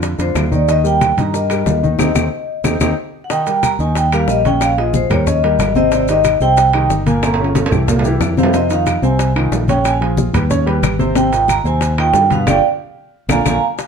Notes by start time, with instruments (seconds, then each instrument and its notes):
Already playing: fingered electric bass F2, grand piano D3 D4 F4
0.02 high bongo, high conga, high timbale, maracas
0.18 fingered electric bass F2, grand piano D3 D4 F4, vibraphone C5, high bongo, high conga, high timbale, maracas
0.35 fingered electric bass D#2, high bongo, low bongo, high conga, high timbale, low timbale, claves, maracas
0.51 grand piano D#3 D#4 D#5, vibraphone D5, high conga, maracas
0.68 grand piano D#3 D#4 D#5, vibraphone D#5, high bongo, high timbale, maracas
0.84 grand piano G3 G4 A#4, vibraphone G5, high conga, maracas
1.01 high bongo, high conga, high timbale, low timbale, claves, maracas
1.17 fingered electric bass G2, grand piano D#3 D#4 D#5, vibraphone A#5, high conga, high timbale, maracas
1.34 grand piano G3 G4 A#4, vibraphone D#5, high bongo, high conga, maracas
1.50 grand piano G3 G4 A#4, high conga, high timbale, claves, maracas
1.66 fingered electric bass D#2, high bongo, low bongo, high conga, low timbale, maracas
1.83 grand piano D#3 D#4 D#5, high conga, maracas
1.99 fingered electric bass D#2, grand piano C4 D#4 G4, high bongo, high conga, high timbale, claves, maracas
2.15 fingered electric bass D#2, grand piano C4 D#4 G4, high bongo, high conga, high timbale, claves, maracas
2.64 fingered electric bass D#2, grand piano C4 D#4 G4, high bongo, high conga, high timbale, claves, maracas
2.80 fingered electric bass D#2, grand piano C4 D#4 G4, high bongo, high conga, high timbale, claves, maracas
3.24 vibraphone F#5
3.30 grand piano D#3 D#4 D#5, vibraphone G5, high bongo, high conga, high timbale, maracas
3.47 grand piano G3 G4 A#4, high bongo, high conga, high timbale, maracas
3.63 vibraphone A#5, high bongo, high conga, high timbale, claves, maracas
3.79 fingered electric bass D#2, grand piano D#3 D#4 D#5, vibraphone G#5, high bongo, maracas
3.95 vibraphone G5, high bongo, high conga, high timbale, maracas
4.12 grand piano G3 G4 A#4, vibraphone F5, high conga, high timbale, claves, maracas
4.28 fingered electric bass A#1, vibraphone D#5, high bongo, low bongo, high conga, maracas
4.45 grand piano C#3 C#4 C#5, vibraphone G5, high bongo, high conga, high timbale, maracas
4.61 vibraphone F5, high bongo, high conga, high timbale, claves, maracas
4.78 grand piano F3 F4 G#4, vibraphone D#5, high conga, high timbale
4.94 vibraphone C5, high bongo, high conga, maracas
5.10 fingered electric bass D#2, grand piano G3 G4 A#4, vibraphone C#5, high bongo, high conga, low conga, high timbale, claves, maracas
5.26 grand piano C#3 C#4 C#5, vibraphone D#5, high bongo, high conga, low conga, maracas
5.43 grand piano G3 G4 A#4, high bongo, high conga, high timbale
5.59 fingered electric bass G#1, high bongo, low bongo, high conga, high timbale, low timbale, claves, maracas
5.75 grand piano C3 C4 C5, vibraphone D#5, high bongo, high conga, maracas
5.92 grand piano C3 C4 C5, vibraphone D5, high bongo, high conga, high timbale, maracas
6.08 grand piano D#3 D#4 G4, vibraphone D#5, high bongo, high conga, high timbale, maracas
6.24 high bongo, high conga, high timbale, claves, maracas
6.40 fingered electric bass C2, grand piano C3 C4 C5, vibraphone G5, high bongo, maracas
6.57 high bongo, high conga, high timbale, maracas
6.73 grand piano D#3 D#4 G4, high conga, high timbale, claves
6.89 fingered electric bass G1, high bongo, low bongo, high conga, maracas
7.06 grand piano A#2 A#3 A#4, vibraphone G#5, high bongo, high conga, high timbale, maracas
7.23 vibraphone A#5, high bongo, high conga, high timbale, claves, maracas
7.34 high timbale
7.39 grand piano C#3 C#4 F4, high conga
7.44 high timbale
7.55 high bongo, high conga, high timbale, maracas
7.66 high timbale
7.71 fingered electric bass C2, grand piano E3 E4 G4, high bongo, high conga, low conga, claves, maracas
7.88 grand piano A#2 A#3 A#4, high bongo, high conga, low conga, low timbale, maracas
7.99 low timbale
8.04 grand piano E3 E4 G4, high bongo, high conga, maracas
8.20 fingered electric bass F2, high bongo, low bongo, high conga, low timbale, claves, maracas
8.37 grand piano C3 C4 C5, vibraphone F5, high bongo, high conga, maracas
8.43 low timbale
8.53 grand piano C3 C4 C5, vibraphone D#5, high bongo, high conga, high timbale, maracas
8.70 grand piano D#3 D#4 F4, vibraphone F5, high bongo, high conga, high timbale, maracas
8.86 high bongo, high conga, high timbale, claves, maracas
9.02 fingered electric bass C2, grand piano C3 C4 C5, vibraphone G#5, high bongo, maracas
9.19 high bongo, high conga, high timbale, maracas
9.36 grand piano D#3 D#4 F4, high conga, high timbale, claves
9.51 fingered electric bass A#1, high bongo, low bongo, high conga, low timbale, maracas
9.68 grand piano C#3 C#4 C#5, vibraphone G5, high bongo, high conga, high timbale, maracas
9.85 vibraphone G#5, high bongo, high conga, high timbale, claves, maracas
10.01 grand piano F3 F4 G#4, high conga, high timbale
10.17 high bongo, high conga, maracas
10.33 fingered electric bass D#2, grand piano G3 G4 B4, high bongo, high conga, low conga, high timbale, claves, maracas
10.50 grand piano C#3 C#4 C#5, high bongo, high conga, low conga, maracas
10.66 grand piano G3 G4 B4, high bongo, high conga, high timbale
10.82 fingered electric bass G#1, high bongo, low bongo, high conga, high timbale, claves, maracas
10.99 grand piano C3 C4 C5, high bongo, high conga, maracas
11.15 grand piano C3 C4 C5, vibraphone G5, high bongo, high conga, high timbale, maracas
11.32 grand piano D#3 D#4 F4, high bongo, high conga, high timbale, maracas
11.48 vibraphone A#5, high bongo, high conga, high timbale, claves, maracas
11.64 fingered electric bass D#2, grand piano C3 C4 C5, vibraphone G#5, high bongo, maracas
11.81 high bongo, high conga, high timbale, maracas
11.98 grand piano D#3 D#4 F4, vibraphone G5, high conga, high timbale, claves
12.14 fingered electric bass G2, high bongo, low bongo, high conga, low timbale, maracas
12.30 grand piano B2 B3 B4, vibraphone F5, high bongo, high conga, high timbale, maracas
12.46 fingered electric bass G1, grand piano D4 F4 G4, vibraphone D5 F5 G5, low bongo, high conga, high timbale, claves, maracas
13.29 fingered electric bass A#1, grand piano A#3 D4 F4, vibraphone F5 G#5 A#5, low bongo, high conga, high timbale, claves, maracas
13.45 fingered electric bass A#1, grand piano A#3 D4 F4, vibraphone F5 G#5 A#5, low bongo, high conga, high timbale, claves, maracas
13.78 high bongo, high conga, high timbale, maracas